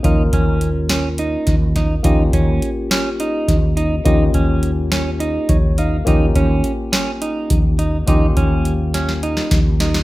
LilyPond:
<<
  \new Staff \with { instrumentName = "Tine electric piano" } { \time 7/8 \key ees \mixolydian \tempo 4 = 104 << { r2. r8 | r2. r8 | r2 r8 des''8 f''8 | r2. r8 |
r2. r8 | } \\ { <bes des' f' bes'>2.~ <bes des' f' bes'>8 | <bes des' f' g'>2.~ <bes des' f' g'>8 | <bes des' f' g'>2.~ <bes des' f' g'>8 | <bes des' f' g'>2.~ <bes des' f' g'>8 |
<bes des' f' g'>2.~ <bes des' f' g'>8 | } >> }
  \new Staff \with { instrumentName = "Clean electric guitar" } { \time 7/8 \key ees \mixolydian ees'8 des'4 des'8 ees'4 ees'8 | ees'8 des'4 des'8 ees'4 ees'8 | ees'8 des'4 des'8 ees'4 ees'8 | ees'8 des'4 des'8 ees'4 ees'8 |
ees'8 des'4 des'8 ees'4 ees'8 | }
  \new Staff \with { instrumentName = "Fretless electric bass" } { \clef bass \time 7/8 \key ees \mixolydian ees,8 ees,2 ees,4 | ees,8 ees,8 r4. ees,4 | ees,8 ees,2 ees,4 | ees,8 ees,8 r4. ees,4 |
ees,8 ees,2 ees,4 | }
  \new DrumStaff \with { instrumentName = "Drums" } \drummode { \time 7/8 <hh bd>8 <hh bd>8 hh8 <hh sn>8 hh8 <hh bd sn>8 <hh bd sn>8 | <hh bd>8 <hh bd>8 hh8 <hh sn>8 hh8 <hh bd sn>8 hh8 | <hh bd>8 <hh bd>8 hh8 <hh sn>8 hh8 <hh bd>8 hh8 | <hh bd>8 <hh bd>8 hh8 <hh sn>8 hh8 <hh bd>8 hh8 |
<hh bd>8 <hh bd>8 hh8 <hh sn>16 sn16 hh16 sn16 <hh bd sn>8 <hh sn>16 sn16 | }
>>